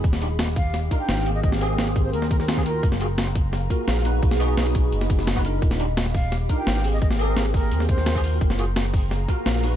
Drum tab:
HH |x-x-x-x-x-x-x-x-|x-x-x-x-x-x-x-x-|x-x-x-x-x-x-x-x-|x-x-x-x-x-x-x-x-|
SH |--x---x---x---x-|--x---x---x---x-|--x---x---x---x-|--x--xxx--x---x-|
SD |-o--oo--o---o---|-o--oo---o-oo---|-o--oo--o---o---|-o--oo---o-oo---|
BD |o-----o---o-----|o-----o---o--o--|o-----o---o-----|o-----o---o--o--|

HH |x-x-x-o-x-x-x-o-|x-x-x-o-x-x-x-o-|x-x-x-o-x-x-x-o-|
SH |--x---x---x---x-|--x---x---x---x-|--x---x---x---x-|
SD |-o--oo--o---o---|-o--oo---o-oo---|-o--oo--o---o---|
BD |o-----o---o-----|o-----o---o--o--|o-----o---o-----|